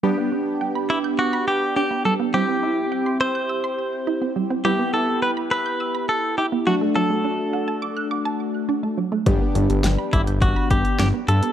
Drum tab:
HH |----------------|----------------|----------------|----------------|
SD |----------------|----------------|----------------|----------------|
BD |----------------|----------------|----------------|----------------|

HH |x-xxx-xxx-xxx-xx|
SD |----o-------o---|
BD |o-----o-o-o-----|